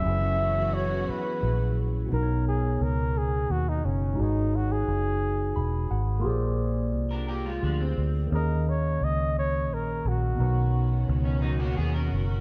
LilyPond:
<<
  \new Staff \with { instrumentName = "Flugelhorn" } { \time 6/8 \key b \major \tempo 4. = 58 e''4 cis''8 b'4 r8 | ais'8 gis'8 ais'8 gis'8 fis'16 dis'16 cis'8 | dis'8 fis'16 gis'4. r8. | r2. |
ais'8 cis''8 dis''8 cis''8 ais'8 fis'8~ | fis'4 r2 | }
  \new Staff \with { instrumentName = "Tine electric piano" } { \time 6/8 \key b \major << { r2. | r2. | r2 b''8 fis''8 | r2. |
r2. | r2. | } \\ { <fis cis' e' gis' b'>2. | <b, b dis' ais' b' cis''>2. | <gis dis' fis' gis' b' cis''>2. | <ais eis' g' gis' bis' d''>2. |
<dis ais cis' gis' dis''>2. | <b, b dis' ais' cis''>2. | } >> }
  \new Staff \with { instrumentName = "Clean electric guitar" } { \time 6/8 \key b \major r2. | r2. | r2. | r4 r16 <d' ais'>16 <ais g'>16 <gis eis'>16 <eis d'>16 bis8. |
r2. | r4 r16 cis'16 <fis dis'>16 <ais fis'>16 <b gis'>16 <cis' ais'>8. | }
  \new Staff \with { instrumentName = "String section" } { \time 6/8 \key b \major <e fis b cis' fis'>2. | r2. | r2. | r2. |
r2. | <dis b cis' fis'>2. | }
  \new Staff \with { instrumentName = "Fingered electric bass" } { \clef bass \time 6/8 \key b \major fis,,4. r8 ais,,4 | b,,4 cis,4 dis,8 fis,,8 | gis,,4 fis,,4 e,,8 gis,,8 | ais,,4 bis,,4 d,8 d,8 |
dis,4 cis,4 ais,,8 ais,,8 | b,,4 cis,4 dis,8 fis,,8 | }
>>